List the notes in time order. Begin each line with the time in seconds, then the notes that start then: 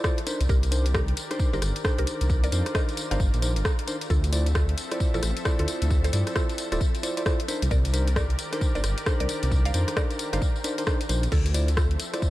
Already playing: F3 A4 C5 E5
0.04 E4 F4 C5 D5, kick, cross-stick, tambourine
0.18 closed hi-hat
0.27 D#3 D4 D#4 G4 A#4 C5 D5, closed hi-hat, tambourine
0.41 C2, closed hi-hat, tambourine
0.49 C2 G4 A#4, kick, tambourine
0.63 closed hi-hat, tambourine
0.72 D4 D#4 A#4 C5, closed hi-hat, tambourine
0.86 closed hi-hat, tambourine
0.94 G4 A#4, kick, cross-stick, tambourine
1.08 closed hi-hat
1.17 closed hi-hat, tambourine
1.31 D4 D#4 A#4 C5, cross-stick, closed hi-hat, tambourine
1.40 kick, tambourine
1.53 G1 D4 D#4 G4 A#4 C5, tambourine
1.62 G1, cross-stick, closed hi-hat, tambourine
1.76 closed hi-hat, tambourine
1.85 D4 D#4 A#4 C5, kick, cross-stick, tambourine
1.99 C2 G4 A#4, closed hi-hat
2.07 F4, closed hi-hat, tambourine
2.21 C2, closed hi-hat, tambourine
2.30 kick, tambourine
2.44 A#4 D5, closed hi-hat, tambourine
2.52 F2 D4 D#4 A#4 C5, closed hi-hat, tambourine
2.66 cross-stick, closed hi-hat, tambourine
2.75 C5 D#5, kick, cross-stick, tambourine
2.89 closed hi-hat, tambourine
2.97 closed hi-hat, tambourine
3.11 G1 D4 D#4 A#4 C5 D5 F5, cross-stick, closed hi-hat, tambourine
3.20 G1, kick, tambourine
3.34 A#1, closed hi-hat, tambourine
3.42 D4 D#4 A#4 C5, closed hi-hat, tambourine
3.56 G1, closed hi-hat, tambourine
3.65 kick, cross-stick, tambourine
3.79 closed hi-hat
3.87 D4 D#4 A#4 C5, closed hi-hat, tambourine
4.01 closed hi-hat, tambourine
4.10 D2 F3 C4 F4 A4 E5, kick, tambourine
4.24 closed hi-hat, tambourine
4.33 E4 F4 C5 D5, closed hi-hat, tambourine
4.46 closed hi-hat, tambourine
4.55 F4 A4, kick, cross-stick, tambourine
4.69 closed hi-hat
4.78 closed hi-hat, tambourine
4.92 E4 F4 C5 D5, cross-stick, closed hi-hat, tambourine
5.00 kick, tambourine
5.14 A1 E4 F4 A4 C5 D5, tambourine
5.23 A1, cross-stick, closed hi-hat, tambourine
5.37 closed hi-hat, tambourine
5.45 E4 F4 C5 D5, kick, cross-stick, tambourine
5.59 D2 F4 A4, closed hi-hat
5.68 closed hi-hat, tambourine
5.82 D2, closed hi-hat, tambourine
5.90 kick, tambourine
6.04 A4 C5, closed hi-hat, tambourine
6.13 G2 E4 F4 C5 D5, closed hi-hat, tambourine
6.27 cross-stick, closed hi-hat, tambourine
6.36 F4 A4, kick, cross-stick, tambourine
6.49 closed hi-hat, tambourine
6.58 closed hi-hat, tambourine
6.72 D1 E4 F4 A4 C5 D5, cross-stick, closed hi-hat, tambourine
6.81 kick, tambourine
6.95 closed hi-hat, tambourine
7.03 E4 F4 C5 D5, closed hi-hat, tambourine
7.17 E4 F4 C5 D5, closed hi-hat, tambourine
7.26 E4 F4 C5 D5, kick, cross-stick, tambourine
7.40 closed hi-hat
7.48 D#3 D4 D#4 G4 A#4 C5 D5, closed hi-hat, tambourine
7.62 C2, closed hi-hat, tambourine
7.71 C2 A#4 D5, kick, tambourine
7.85 closed hi-hat, tambourine
7.94 D4 D#4 A#4 C5, closed hi-hat, tambourine
8.08 closed hi-hat, tambourine
8.16 A#4 D5, kick, cross-stick, tambourine
8.30 closed hi-hat
8.39 closed hi-hat, tambourine
8.53 D4 D#4 A#4 C5, cross-stick, closed hi-hat, tambourine
8.61 kick, tambourine
8.75 G1 D4 D#4 A#4 C5 D5, tambourine
8.84 G1, cross-stick, closed hi-hat, tambourine
8.98 closed hi-hat, tambourine
9.06 D4 D#4 A#4 C5, kick, cross-stick, tambourine
9.20 C2 A#4 D5, closed hi-hat
9.29 closed hi-hat, tambourine
9.43 C2, closed hi-hat, tambourine
9.52 kick, tambourine
9.65 D5 F5, closed hi-hat, tambourine
9.74 F2 D4 D#4 A#4 C5, closed hi-hat, tambourine
9.88 cross-stick, closed hi-hat, tambourine
9.97 A#4 D5, kick, cross-stick, tambourine
10.11 closed hi-hat, tambourine
10.19 closed hi-hat, tambourine
10.33 G1 D4 D#4 A#4 C5 D5 F5, cross-stick, closed hi-hat, tambourine
10.42 kick, tambourine
10.56 tambourine
10.64 D4 D#4 A#4 C5, closed hi-hat, tambourine
10.78 D4 D#4 A#4 C5, closed hi-hat, tambourine
10.87 D4 D#4 A#4 C5, kick, cross-stick, tambourine
11.01 closed hi-hat, tambourine
11.09 A#1 D4 D#4 A#4 C5, closed hi-hat, tambourine
11.23 closed hi-hat, tambourine
11.32 D2 F3 C4 F4 A4 E5, kick, crash, tambourine
11.46 closed hi-hat, tambourine
11.54 E4 F4 C5 D5, closed hi-hat, tambourine
11.68 closed hi-hat, tambourine
11.77 F4 A4, kick, cross-stick, tambourine
11.91 closed hi-hat
12.00 closed hi-hat, tambourine
12.14 E4 F4 C5 D5, cross-stick, closed hi-hat, tambourine
12.22 kick, tambourine